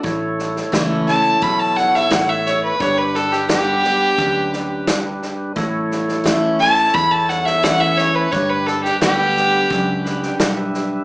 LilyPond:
<<
  \new Staff \with { instrumentName = "Fiddle" } { \time 4/4 \key a \mixolydian \tempo 4 = 87 r4. a''8 b''16 a''16 fis''16 e''16 fis''16 e''16 cis''16 b'16 | cis''16 b'16 a'16 g'16 g'2 r4 | r4. a''8 b''16 a''16 fis''16 e''16 fis''16 e''16 cis''16 b'16 | cis''16 b'16 a'16 g'16 g'2 r4 | }
  \new Staff \with { instrumentName = "Tonewheel organ" } { \time 4/4 \key a \mixolydian << { r1 | r1 | r1 | r2 r8 b''16 g''16 fis''16 e''8. | } \\ { <e' a' cis''>1 | <d' g' b'>1 | <e' a' cis''>1 | <d' g' b'>1 | } >> }
  \new Staff \with { instrumentName = "Steel-string acoustic guitar" } { \time 4/4 \key a \mixolydian << { r4 <e a cis' e'>8 <cis' e'>8 r2 | r4 <d g b g'>8 <b g'>8 r2 | r4 <e a cis' e'>8 <cis' e'>8 r4 <e a cis' e'>4 | r4 <d g b g'>4 r2 | } \\ { a,2 b,4 a,4 | g,2 fis,4 g,4 | a,2 e,2 | g,2 fis,4 g,4 | } >> }
  \new Staff \with { instrumentName = "Fingered electric bass" } { \clef bass \time 4/4 \key a \mixolydian a,,4 cis,4 b,,4 a,,4 | g,,2 d,2 | a,,2 e,2 | g,,4 d,4 cis,4 b,,4 | }
  \new DrumStaff \with { instrumentName = "Drums" } \drummode { \time 4/4 <bd sn>8 sn16 sn16 <hhp bd sn>8 sn8 <bd sn>8 sn16 sn16 <hhp bd sn>8 sn8 | <bd sn>8 sn16 sn16 <hhp bd sn>8 sn8 <bd sn>8 sn8 <hhp bd sn>8 sn8 | <bd sn>8 sn16 sn16 <hhp bd sn>8 sn8 <bd sn>8 sn16 sn16 <hhp bd sn>8 sn8 | <bd sn>8 sn16 sn16 <hhp bd sn>8 sn8 <bd sn>8 sn16 sn16 <hhp bd sn>8 sn8 | }
>>